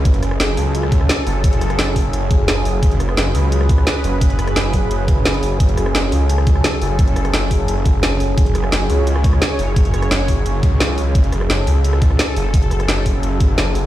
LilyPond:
<<
  \new Staff \with { instrumentName = "Analog synth pad" } { \time 4/4 \key fis \minor \tempo 4 = 173 << { a'1~ | a'1 | b'1~ | b'1 |
a'1~ | a'1 | cis''1~ | cis''1 |
a'1~ | a'1 | } \\ { <fis cis' gis'>1~ | <fis cis' gis'>1~ | <fis cis' gis'>1~ | <fis cis' gis'>1~ |
<fis cis' gis'>1~ | <fis cis' gis'>1~ | <fis cis' gis'>1~ | <fis cis' gis'>1~ |
<fis cis' gis'>1~ | <fis cis' gis'>1 | } >> }
  \new Staff \with { instrumentName = "Detuned saw bass" } { \clef bass \time 4/4 \key fis \minor fis,,4. cis,4. r8 fis,,8~ | fis,,2 fis,,2 | fis,,4. cis,4. r8 fis,,8~ | fis,,2 fis,,2 |
fis,,4. cis,4. r8 fis,,8~ | fis,,2 fis,,2 | fis,,4. cis,4. r8 fis,,8~ | fis,,2 fis,,8 cis,8 cis,4 |
fis,,4. cis,4. r8 fis,,8~ | fis,,2 fis,,2 | }
  \new DrumStaff \with { instrumentName = "Drums" } \drummode { \time 4/4 <hh bd>16 hh16 <hh ss>16 ss16 <hh sn>8 hho8 hh16 ss16 <hh bd>16 ss16 <hh sn>8 hho8 | <hh bd>16 hh16 <hh ss>16 <hh ss>16 <hh sn>8 <hho bd>8 hh8 <hh bd>8 <hh sn>8 hho8 | <hh bd>16 hh16 <hh ss>16 ss16 <hh sn>8 hho8 hh16 ss16 <hh bd>16 ss16 <hh sn>8 hho8 | <hh bd>16 hh16 <hh ss>16 <hh ss>16 <hh sn>8 <hho bd>8 hh8 <hh bd>8 <hh sn>16 hh16 hho8 |
<hh bd>16 hh16 <hh ss>16 ss16 <hh sn>8 hho8 hh16 ss16 <hh bd>16 ss16 <hh sn>8 hho8 | <hh bd>16 hh16 <hh ss>16 <hh ss>16 <hh sn>8 <hho bd>8 hh8 <hh bd>8 <hh sn>8 hho8 | <hh bd>16 hh16 <hh ss>16 ss16 <hh sn>8 hho8 hh16 ss16 <hh bd>16 ss16 <hh sn>8 hho8 | <hh bd>16 hh16 <hh ss>16 <hh ss>16 <hh sn>8 <hho bd>8 hh8 <hh bd>8 <hh sn>8 hho8 |
<hh bd>16 hh16 <hh ss>16 ss16 <hh sn>8 hho8 hh16 ss16 <hh bd>16 ss16 <hh sn>8 hho8 | <hh bd>16 hh16 <hh ss>16 <hh ss>16 <hh sn>8 <hho bd>8 hh8 <hh bd>8 <hh sn>8 hho8 | }
>>